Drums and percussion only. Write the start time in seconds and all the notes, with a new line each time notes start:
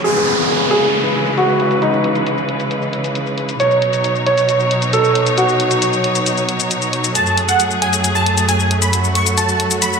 0.04 closed hi-hat, crash, shaker
0.26 closed hi-hat
0.38 closed hi-hat, shaker
0.49 closed hi-hat, shaker
0.60 shaker
0.71 closed hi-hat
0.82 closed hi-hat, shaker
0.93 closed hi-hat, shaker
1.04 shaker
1.15 closed hi-hat
1.26 closed hi-hat, shaker
1.38 closed hi-hat, shaker
1.49 shaker
1.60 closed hi-hat
1.71 closed hi-hat, shaker
1.82 closed hi-hat, shaker
1.93 shaker
2.04 closed hi-hat
2.15 closed hi-hat, shaker
2.26 closed hi-hat, shaker
2.38 shaker
2.49 closed hi-hat
2.60 closed hi-hat, shaker
2.71 closed hi-hat, shaker
2.82 shaker
2.93 closed hi-hat
3.04 closed hi-hat, shaker
3.15 closed hi-hat, shaker
3.26 shaker
3.38 closed hi-hat
3.49 closed hi-hat, shaker
3.60 closed hi-hat, shaker
3.71 shaker
3.82 closed hi-hat
3.93 closed hi-hat, shaker
4.04 closed hi-hat, shaker
4.15 shaker
4.26 closed hi-hat
4.38 closed hi-hat, shaker
4.49 closed hi-hat, shaker
4.60 shaker
4.71 closed hi-hat
4.82 closed hi-hat, shaker
4.93 closed hi-hat, shaker
5.04 shaker
5.15 closed hi-hat
5.26 closed hi-hat, shaker
5.38 closed hi-hat, shaker
5.49 shaker
5.60 closed hi-hat
5.71 closed hi-hat, shaker
5.82 closed hi-hat, shaker
5.93 shaker
6.04 closed hi-hat
6.15 closed hi-hat, shaker
6.26 closed hi-hat, shaker
6.38 closed hi-hat, shaker
6.49 closed hi-hat
6.60 closed hi-hat, shaker
6.71 closed hi-hat, shaker
6.82 closed hi-hat, shaker
6.93 closed hi-hat
7.04 closed hi-hat, shaker
7.15 closed hi-hat, shaker
7.26 shaker
7.38 closed hi-hat
7.49 closed hi-hat, shaker
7.60 closed hi-hat, shaker
7.71 shaker
7.82 closed hi-hat
7.93 closed hi-hat, shaker
8.04 closed hi-hat, shaker
8.15 shaker
8.26 closed hi-hat
8.37 closed hi-hat, shaker
8.49 closed hi-hat, shaker
8.60 shaker
8.71 closed hi-hat
8.82 closed hi-hat, shaker
8.93 closed hi-hat, shaker
9.04 shaker
9.15 closed hi-hat
9.26 closed hi-hat, shaker
9.38 closed hi-hat, shaker
9.49 shaker
9.60 closed hi-hat
9.71 closed hi-hat, shaker
9.82 closed hi-hat, shaker
9.93 shaker